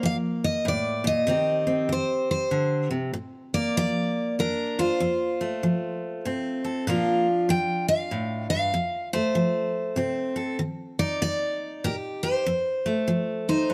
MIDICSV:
0, 0, Header, 1, 3, 480
1, 0, Start_track
1, 0, Key_signature, -2, "major"
1, 0, Tempo, 621118
1, 989, Time_signature, 3, 2, 24, 8
1, 10617, End_track
2, 0, Start_track
2, 0, Title_t, "Steel-string acoustic guitar"
2, 0, Program_c, 0, 25
2, 43, Note_on_c, 0, 77, 90
2, 122, Note_off_c, 0, 77, 0
2, 343, Note_on_c, 0, 75, 76
2, 521, Note_off_c, 0, 75, 0
2, 528, Note_on_c, 0, 74, 78
2, 825, Note_off_c, 0, 74, 0
2, 828, Note_on_c, 0, 75, 82
2, 1484, Note_off_c, 0, 75, 0
2, 1488, Note_on_c, 0, 72, 67
2, 1775, Note_off_c, 0, 72, 0
2, 1784, Note_on_c, 0, 72, 64
2, 2226, Note_off_c, 0, 72, 0
2, 2736, Note_on_c, 0, 74, 84
2, 2906, Note_off_c, 0, 74, 0
2, 2916, Note_on_c, 0, 74, 87
2, 3361, Note_off_c, 0, 74, 0
2, 3398, Note_on_c, 0, 70, 79
2, 3703, Note_off_c, 0, 70, 0
2, 3704, Note_on_c, 0, 72, 75
2, 5105, Note_off_c, 0, 72, 0
2, 5797, Note_on_c, 0, 79, 89
2, 6090, Note_off_c, 0, 79, 0
2, 6093, Note_on_c, 0, 77, 84
2, 6540, Note_off_c, 0, 77, 0
2, 6569, Note_on_c, 0, 77, 85
2, 7018, Note_off_c, 0, 77, 0
2, 7057, Note_on_c, 0, 72, 69
2, 7983, Note_off_c, 0, 72, 0
2, 8494, Note_on_c, 0, 74, 83
2, 8661, Note_off_c, 0, 74, 0
2, 8671, Note_on_c, 0, 74, 90
2, 9153, Note_on_c, 0, 70, 77
2, 9165, Note_off_c, 0, 74, 0
2, 9234, Note_off_c, 0, 70, 0
2, 9451, Note_on_c, 0, 72, 77
2, 10414, Note_off_c, 0, 72, 0
2, 10423, Note_on_c, 0, 63, 51
2, 10427, Note_on_c, 0, 72, 58
2, 10617, Note_off_c, 0, 63, 0
2, 10617, Note_off_c, 0, 72, 0
2, 10617, End_track
3, 0, Start_track
3, 0, Title_t, "Steel-string acoustic guitar"
3, 0, Program_c, 1, 25
3, 0, Note_on_c, 1, 58, 47
3, 24, Note_on_c, 1, 53, 56
3, 471, Note_off_c, 1, 53, 0
3, 502, Note_on_c, 1, 45, 57
3, 805, Note_on_c, 1, 46, 54
3, 806, Note_off_c, 1, 45, 0
3, 967, Note_off_c, 1, 58, 0
3, 977, Note_off_c, 1, 46, 0
3, 980, Note_on_c, 1, 48, 69
3, 983, Note_on_c, 1, 51, 47
3, 989, Note_on_c, 1, 60, 54
3, 1000, Note_on_c, 1, 67, 58
3, 1280, Note_off_c, 1, 60, 0
3, 1289, Note_on_c, 1, 60, 51
3, 1429, Note_off_c, 1, 48, 0
3, 1450, Note_off_c, 1, 51, 0
3, 1459, Note_on_c, 1, 51, 56
3, 1908, Note_off_c, 1, 51, 0
3, 1941, Note_on_c, 1, 50, 52
3, 2242, Note_off_c, 1, 50, 0
3, 2245, Note_on_c, 1, 48, 57
3, 2407, Note_off_c, 1, 60, 0
3, 2413, Note_off_c, 1, 67, 0
3, 2420, Note_off_c, 1, 48, 0
3, 2423, Note_on_c, 1, 46, 62
3, 2736, Note_on_c, 1, 58, 51
3, 2870, Note_off_c, 1, 46, 0
3, 2914, Note_on_c, 1, 53, 57
3, 3356, Note_off_c, 1, 53, 0
3, 3392, Note_on_c, 1, 41, 56
3, 3403, Note_on_c, 1, 62, 52
3, 3700, Note_on_c, 1, 65, 62
3, 3834, Note_off_c, 1, 41, 0
3, 3851, Note_off_c, 1, 58, 0
3, 3854, Note_off_c, 1, 62, 0
3, 3867, Note_on_c, 1, 41, 64
3, 4179, Note_on_c, 1, 57, 53
3, 4312, Note_off_c, 1, 41, 0
3, 4353, Note_on_c, 1, 53, 54
3, 4795, Note_off_c, 1, 53, 0
3, 4833, Note_on_c, 1, 48, 56
3, 4840, Note_on_c, 1, 60, 48
3, 5132, Note_off_c, 1, 65, 0
3, 5135, Note_on_c, 1, 69, 54
3, 5275, Note_off_c, 1, 48, 0
3, 5290, Note_off_c, 1, 69, 0
3, 5292, Note_off_c, 1, 57, 0
3, 5310, Note_on_c, 1, 46, 66
3, 5314, Note_off_c, 1, 60, 0
3, 5315, Note_on_c, 1, 53, 56
3, 5318, Note_on_c, 1, 58, 56
3, 5325, Note_on_c, 1, 62, 50
3, 5328, Note_on_c, 1, 65, 59
3, 5614, Note_off_c, 1, 58, 0
3, 5753, Note_off_c, 1, 46, 0
3, 5784, Note_off_c, 1, 53, 0
3, 5787, Note_on_c, 1, 53, 56
3, 6232, Note_off_c, 1, 53, 0
3, 6269, Note_on_c, 1, 45, 53
3, 6566, Note_off_c, 1, 45, 0
3, 6569, Note_on_c, 1, 43, 52
3, 6734, Note_off_c, 1, 62, 0
3, 6749, Note_off_c, 1, 43, 0
3, 6752, Note_on_c, 1, 41, 65
3, 7059, Note_on_c, 1, 57, 53
3, 7195, Note_off_c, 1, 41, 0
3, 7226, Note_on_c, 1, 53, 57
3, 7672, Note_off_c, 1, 53, 0
3, 7698, Note_on_c, 1, 48, 57
3, 7706, Note_on_c, 1, 60, 52
3, 8001, Note_off_c, 1, 65, 0
3, 8005, Note_on_c, 1, 69, 56
3, 8148, Note_off_c, 1, 48, 0
3, 8165, Note_off_c, 1, 69, 0
3, 8173, Note_off_c, 1, 57, 0
3, 8184, Note_on_c, 1, 51, 66
3, 8188, Note_off_c, 1, 60, 0
3, 8495, Note_on_c, 1, 63, 49
3, 8631, Note_off_c, 1, 51, 0
3, 8668, Note_on_c, 1, 58, 59
3, 9113, Note_off_c, 1, 58, 0
3, 9152, Note_on_c, 1, 46, 59
3, 9159, Note_on_c, 1, 67, 58
3, 9446, Note_off_c, 1, 67, 0
3, 9456, Note_on_c, 1, 67, 59
3, 9595, Note_off_c, 1, 46, 0
3, 9611, Note_off_c, 1, 63, 0
3, 9611, Note_off_c, 1, 67, 0
3, 9632, Note_on_c, 1, 41, 66
3, 9936, Note_on_c, 1, 57, 50
3, 10075, Note_off_c, 1, 41, 0
3, 10105, Note_on_c, 1, 53, 56
3, 10552, Note_off_c, 1, 53, 0
3, 10585, Note_on_c, 1, 43, 58
3, 10617, Note_off_c, 1, 43, 0
3, 10617, Note_off_c, 1, 57, 0
3, 10617, End_track
0, 0, End_of_file